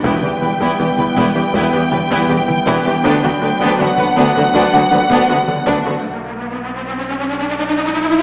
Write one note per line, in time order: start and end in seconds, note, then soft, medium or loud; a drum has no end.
0.00 0.11 E1 medium
0.00 0.15 E2 loud
0.00 0.11 E2 medium
0.00 3.02 B4 medium
0.00 3.75 G5 medium
0.04 3.06 E1 medium
0.04 0.16 E3 loud
0.04 3.04 G3 medium
0.04 6.04 B3 medium
0.04 0.22 B3 medium
0.04 6.01 B3 medium
0.04 0.22 E4 medium
0.04 3.05 E4 medium
0.04 taiko loud
0.23 0.30 E2 medium
0.23 0.34 E2 medium
0.23 0.35 G3 medium
0.23 0.31 B3 soft
0.23 0.32 G4 medium
0.23 taiko mid medium
0.42 0.50 E1 medium
0.42 0.49 E2 medium
0.42 0.53 E3 medium
0.42 0.49 B3 medium
0.42 0.53 B3 medium
0.42 0.50 B4 medium
0.60 0.71 E2 medium
0.60 0.68 E2 medium
0.60 0.72 E3 loud
0.60 0.78 B3 medium
0.60 0.78 E4 medium
0.60 taiko medium
0.79 0.87 E1 medium
0.79 0.86 E2 medium
0.79 0.91 E3 medium
0.79 0.87 B3 medium
0.79 0.91 B3 medium
0.79 0.86 G4 medium
0.98 1.05 E2 medium
0.98 1.09 E2 medium
0.98 1.06 B3 medium
0.98 1.10 E4 medium
0.98 1.05 B4 medium
0.98 taiko mid medium
1.16 1.25 E1 medium
1.16 1.28 E2 loud
1.16 1.25 E2 medium
1.16 1.28 E3 loud
1.16 1.34 B3 medium
1.16 1.34 E4 medium
1.35 1.43 E2 medium
1.35 1.47 E3 medium
1.35 1.47 B3 medium
1.35 1.43 B3 medium
1.35 1.42 G4 medium
1.54 1.62 E1 loud
1.54 1.62 E2 loud
1.54 1.65 E2 loud
1.54 1.66 E3 loud
1.54 1.72 B3 loud
1.54 1.71 E4 loud
1.54 taiko medium
1.73 1.81 E2 medium
1.73 1.84 E3 medium
1.73 1.85 B3 medium
1.73 1.81 B3 medium
1.73 1.80 G4 medium
1.92 2.00 E1 medium
1.92 1.99 E2 medium
1.92 2.03 E2 medium
1.92 2.03 G3 medium
1.92 2.00 B3 medium
1.92 1.99 B4 medium
1.92 taiko mid medium
2.11 2.22 E2 loud
2.11 2.19 E2 loud
2.11 2.22 E3 loud
2.11 2.28 B3 medium
2.11 2.28 E4 loud
2.11 taiko medium
2.29 2.38 E1 medium
2.29 2.37 E2 medium
2.29 2.41 E3 medium
2.29 2.41 B3 medium
2.29 2.38 B3 medium
2.29 2.37 G4 medium
2.48 2.59 E3 medium
2.48 taiko mid medium
2.66 2.75 E1 loud
2.66 2.78 E2 loud
2.66 2.75 E2 loud
2.66 2.78 E3 loud
2.66 2.85 B3 loud
2.66 2.84 E4 loud
2.66 taiko medium
2.85 2.93 E2 medium
2.85 2.97 E3 medium
2.85 2.97 B3 medium
2.85 2.94 B3 medium
2.85 2.93 G4 medium
3.04 6.06 D1 medium
3.04 3.12 D2 loud
3.04 3.16 D2 loud
3.04 3.12 D2 loud
3.04 6.04 F#3 medium
3.04 6.00 F#3 medium
3.04 3.15 B3 loud
3.04 3.22 B3 loud
3.04 6.04 D4 medium
3.04 3.22 D4 loud
3.04 6.00 B4 medium
3.04 taiko loud
3.04 riser medium
3.23 3.35 D2 medium
3.23 3.31 D2 medium
3.23 3.31 B3 medium
3.23 3.34 D4 medium
3.23 3.31 F#4 medium
3.23 taiko mid medium
3.42 3.50 D2 medium
3.42 3.53 D3 medium
3.42 3.50 B3 medium
3.42 3.53 F#4 medium
3.42 3.50 B4 medium
3.60 3.72 D2 loud
3.60 3.69 D2 loud
3.60 3.72 B3 loud
3.60 3.78 B3 loud
3.60 3.79 D4 loud
3.60 taiko medium
3.79 3.87 D2 medium
3.79 3.88 D2 medium
3.79 3.92 D3 medium
3.79 3.87 B3 medium
3.79 3.90 F#4 medium
3.79 3.88 F#4 medium
3.79 6.04 F#5 loud
3.97 4.06 D2 medium
3.97 4.10 D2 medium
3.97 4.06 B3 medium
3.97 4.09 B4 medium
3.97 4.06 B4 medium
3.97 taiko mid medium
4.16 4.25 D2 loud
4.16 4.29 D2 loud
4.16 4.25 D2 loud
4.16 4.28 B3 loud
4.16 4.34 B3 loud
4.16 4.34 D4 medium
4.35 4.44 D2 medium
4.35 4.48 D3 medium
4.35 4.44 B3 medium
4.35 4.47 F#4 medium
4.35 4.43 F#4 medium
4.54 4.62 D2 loud
4.54 4.66 D2 loud
4.54 4.66 B3 loud
4.54 4.72 B3 loud
4.54 4.72 D4 loud
4.54 taiko medium
4.73 4.82 D2 medium
4.73 4.85 D3 medium
4.73 4.81 B3 medium
4.73 4.84 F#4 medium
4.73 4.81 F#4 medium
4.91 4.99 D2 medium
4.91 5.00 D2 medium
4.91 5.04 D2 medium
4.91 5.00 B3 medium
4.91 5.03 D4 medium
4.91 5.00 B4 medium
4.91 taiko mid medium
5.09 5.18 D2 loud
5.09 5.22 D2 loud
5.09 5.21 B3 loud
5.09 5.28 B3 loud
5.09 5.28 D4 medium
5.09 taiko medium
5.29 5.37 D2 medium
5.29 5.41 D3 medium
5.29 5.37 B3 medium
5.29 5.40 F#4 medium
5.29 5.36 F#4 medium
5.48 5.60 D3 medium
5.48 taiko mid medium
5.66 5.74 D2 medium
5.66 5.78 D2 loud
5.66 5.75 D2 loud
5.66 5.77 B3 loud
5.66 5.84 B3 medium
5.66 5.84 D4 medium
5.66 taiko medium
5.85 5.94 D2 medium
5.85 5.97 D3 medium
5.85 5.93 B3 medium
5.85 5.97 F#4 medium
5.85 5.93 F#4 medium
6.05 8.23 B1 medium